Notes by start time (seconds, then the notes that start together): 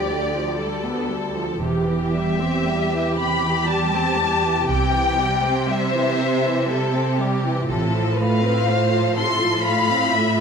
Already playing: D2 G4 D5
0.09 D3
0.34 F3
0.58 G3 A4
0.84 B3
1.10 G3
1.36 F3
1.60 E1 E2 C3 G4
1.85 E3
2.11 G3 E5
2.39 C4
2.64 G3
2.90 E3
3.15 C3 B5
3.42 E3
3.66 G3 A5
3.92 C4
4.16 G3
4.43 E3
4.68 C2 C3 G5
4.93 E3
5.17 G3
5.42 C4
5.68 G3 C5 E5
5.94 E3
6.19 C3
6.44 E3
6.69 G3 A4
6.94 C4
7.19 G3 G4
7.44 E3
7.69 A1 A2 C3 F4 A4
7.93 F3
8.17 A3 B4 F5
8.43 C4
8.66 A3 C5
8.93 F3
9.15 C3 A4 C6
9.40 F3
9.61 A3 F5 B5
9.89 C4
10.13 A3 E5